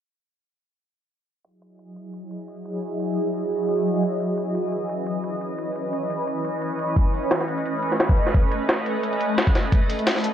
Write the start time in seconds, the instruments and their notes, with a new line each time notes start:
1.45 ambient pad F#3 E4 G#4 D#5, closed hi-hat
1.62 closed hi-hat
1.79 closed hi-hat
1.96 closed hi-hat
2.14 closed hi-hat
2.31 closed hi-hat
2.48 closed hi-hat
2.65 closed hi-hat
2.83 closed hi-hat
3.00 closed hi-hat
3.17 closed hi-hat
3.34 closed hi-hat
3.52 closed hi-hat
3.69 closed hi-hat
3.86 closed hi-hat
4.03 closed hi-hat
4.20 ambient pad E3 C#4 B4, closed hi-hat
4.38 closed hi-hat
4.55 closed hi-hat
4.72 closed hi-hat
4.89 closed hi-hat
5.07 closed hi-hat
5.24 closed hi-hat
5.41 closed hi-hat
5.58 closed hi-hat
5.76 closed hi-hat
5.93 closed hi-hat
6.10 closed hi-hat
6.28 closed hi-hat
6.45 closed hi-hat
6.62 closed hi-hat
6.79 ambient pad A3, closed hi-hat
6.96 kick, closed hi-hat
7.14 closed hi-hat, open hi-hat
7.23 closed hi-hat
7.31 snare, closed hi-hat
7.40 snare
7.48 closed hi-hat
7.58 closed hi-hat
7.66 closed hi-hat
7.83 closed hi-hat
7.92 snare
8.00 snare, closed hi-hat
8.09 kick
8.17 closed hi-hat
8.27 snare
8.34 kick, closed hi-hat
8.52 closed hi-hat
8.69 snare, closed hi-hat
8.86 closed hi-hat
9.03 closed hi-hat
9.13 closed hi-hat
9.21 closed hi-hat
9.38 snare, closed hi-hat
9.47 kick, closed hi-hat
9.55 snare, closed hi-hat
9.72 ambient pad F#4 G#4 E5, kick, closed hi-hat
9.90 closed hi-hat, open hi-hat
9.99 closed hi-hat
10.07 snare, closed hi-hat
10.16 snare
10.24 closed hi-hat